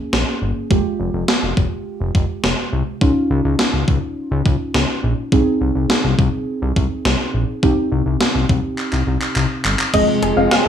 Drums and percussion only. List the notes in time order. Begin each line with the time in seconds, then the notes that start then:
0.13 snare
0.71 kick
1.28 snare
1.57 kick
2.15 kick
2.44 snare
3.01 kick
3.59 snare
3.88 kick
4.46 kick
4.74 snare
5.32 kick
5.90 snare
6.19 kick
6.76 kick
7.05 snare
7.63 kick
8.21 snare
8.49 kick
8.78 clap
8.93 clap
9.22 clap
9.36 clap
9.65 clap
9.79 clap
9.94 kick, closed hi-hat, crash
10.23 closed hi-hat
10.51 snare, closed hi-hat